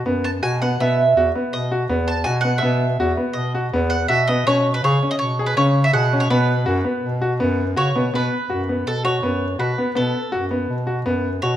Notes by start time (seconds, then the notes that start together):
0.06 F#2 B3
0.24 A5
0.43 B2 F#4 G#5
0.62 B3 F#5
0.80 B2 B3 E5
1.16 E2 F#4
1.35 B3
1.52 B2 D#5
1.72 F#4
1.89 E2 B3
2.08 A5
2.24 B2 F#4 G#5
2.41 B3 F#5
2.58 E5
2.62 B2 B3
2.99 E2 F#4
3.17 B3
3.33 B2 D#5
3.55 F#4
3.73 E2 B3
3.90 F#5
4.08 B2 F#4 E5
4.27 B3 D#5
4.46 B2 C#4 C#5
4.74 B4
4.83 C#3 G#4 C#5
5.02 C#4
5.11 D#5
5.19 B2 C#5
5.39 G#4
5.46 B4
5.57 C#3 C#4 C#5
5.84 E5
5.93 B2 G#4 F#5
6.13 C#4
6.20 C#5
6.30 B2 B3 B4
6.66 F#2 F#4
6.84 B3
7.03 B2
7.22 F#4
7.40 F#2 B3
7.76 C#3 F#4 C#5
7.95 B2 B3
8.13 B2 B3 B4
8.50 F#2 F#4
8.69 B3
8.86 B2 A4
9.05 F#4 C#5
9.22 F#2 B3
9.59 B2 F#4 B4
9.78 B3
9.95 B2 B3 A4
10.32 F#2 F#4
10.51 B3
10.69 B2
10.87 F#4
11.06 F#2 B3
11.42 B2 F#4 C#5